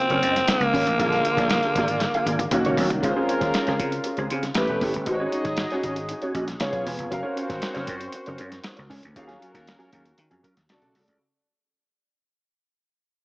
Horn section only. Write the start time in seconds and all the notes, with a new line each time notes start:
3.02 A#3 C#4 F4 A#4
4.55 B3 E4 G4 B4
5.06 D#4 F#4 G#4 D#5
6.61 C#4 F4 G#4 C#5
7.12 C4 F#4 C5
9.15 A#3 F#4 A#4
10.70 A3 D4 F#4 A4